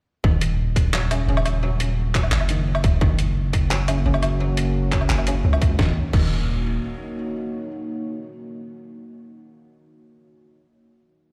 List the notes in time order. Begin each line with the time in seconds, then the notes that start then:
0.24 D#1 D#3, kick
0.41 closed hi-hat
0.76 kick, closed hi-hat
0.93 F#3, clap
1.11 C#3, closed hi-hat, low woodblock
1.28 D#1 C#3
1.37 low woodblock
1.46 closed hi-hat, low woodblock
1.63 F#3
1.80 closed hi-hat
2.15 F#3, kick, clap, closed hi-hat
2.23 low woodblock
2.32 F#1, clap
2.40 low woodblock
2.49 D#3, closed hi-hat
2.75 low woodblock
2.84 D#1, kick, closed hi-hat
3.01 F#1 D#3 A#3 C#4 F#4 C#5, kick
3.19 closed hi-hat
3.53 kick, closed hi-hat
3.71 F#3, clap
3.88 C#3, closed hi-hat, low woodblock
4.06 F#1 C#3
4.14 low woodblock
4.23 closed hi-hat, low woodblock
4.40 F#3
4.57 closed hi-hat
4.92 F#3, kick, clap, closed hi-hat
5.01 low woodblock
5.09 F#1, clap
5.18 low woodblock
5.27 C#3, closed hi-hat
5.45 C#2
5.53 low woodblock
5.62 kick, closed hi-hat
5.78 D#1 D#3 A#3 D#4 F#4 C#5, kick, snare
6.13 D#1 D#3, kick, crash